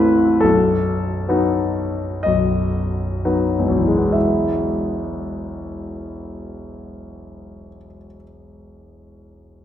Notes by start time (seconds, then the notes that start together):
Already playing: A0 A1 A3 C4 E4 B4 C5
0.41 B0 B1 A4
1.29 F#3 B3 D#4
2.23 B0 B1 D#5
3.25 F#3 B3 D#4
3.59 E1
3.68 B1
3.77 E3
3.87 G#3
3.96 B3
4.05 E4
4.12 E5